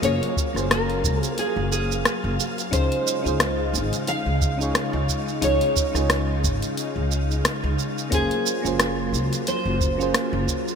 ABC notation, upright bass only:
X:1
M:4/4
L:1/16
Q:"Swing 16ths" 1/4=89
K:Db
V:1 name="Upright bass" clef=bass
G,,, z2 G,,,3 D,, z2 G,,,3 z G,,, z2 | D,, z2 D,,3 A,,, z2 D,,3 z D,, z2 | D,, z2 D,,3 A,,, z2 D,,3 z D,, z2 | G,,, z2 G,,,3 D,, z2 G,,,3 z G,,, z2 |]